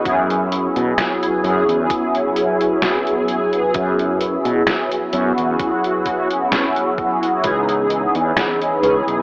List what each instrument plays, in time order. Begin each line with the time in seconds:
Already playing: ambient pad E6
0.04 fretless electric bass F#2, analog polysynth F#3 B3 C#4 E4 G#4, ambient pad F#4 C#5 B5, kick, closed hi-hat
0.30 closed hi-hat
0.52 closed hi-hat
0.76 fretless electric bass B2, closed hi-hat
0.98 snare, closed hi-hat
1.23 closed hi-hat
1.43 fretless electric bass F#2, analog polysynth F#3 B3 C#4 E4 G#4, closed hi-hat
1.68 fretless electric bass E2, closed hi-hat
1.90 kick, closed hi-hat
2.15 closed hi-hat
2.36 closed hi-hat
2.61 closed hi-hat
2.82 snare, closed hi-hat
3.07 closed hi-hat
3.28 closed hi-hat
3.53 closed hi-hat
3.74 fretless electric bass F#2, analog polysynth F#3 B3 C#4 E4 G#4, kick, closed hi-hat
3.99 closed hi-hat
4.21 closed hi-hat
4.45 fretless electric bass B2, closed hi-hat
4.67 snare, closed hi-hat
4.91 closed hi-hat
5.12 fretless electric bass F#2, analog polysynth F#3 B3 C#4 E4 F#4, closed hi-hat
5.38 fretless electric bass E2, closed hi-hat
5.60 kick, closed hi-hat
5.84 closed hi-hat
6.06 kick, closed hi-hat
6.30 closed hi-hat
6.52 snare, closed hi-hat
6.76 closed hi-hat
6.98 kick, closed hi-hat
7.23 closed hi-hat
7.42 fretless electric bass C#2, analog polysynth E3 B3 C#4 D#4 G#4, ambient pad G#4, kick, closed hi-hat
7.69 closed hi-hat
7.90 closed hi-hat
8.15 fretless electric bass E2, closed hi-hat
8.37 snare, closed hi-hat
8.61 closed hi-hat
8.81 fretless electric bass C#2, analog polysynth E3 B3 C#4 D#4 G#4, closed hi-hat
9.07 fretless electric bass B1, closed hi-hat